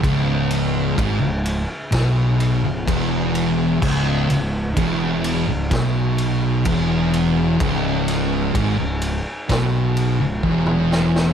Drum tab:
CC |----------------|x---------------|----------------|
RD |x-x-x-x-x-x-x-x-|--x-x-x-x-x-x-x-|x-x-x-x-x-x-----|
SD |--------o-------|--------o-------|--o-----o-----oo|
T2 |----------------|----------------|-------------o--|
BD |o---o---o---o---|o---o---o---o---|o---o---o---o---|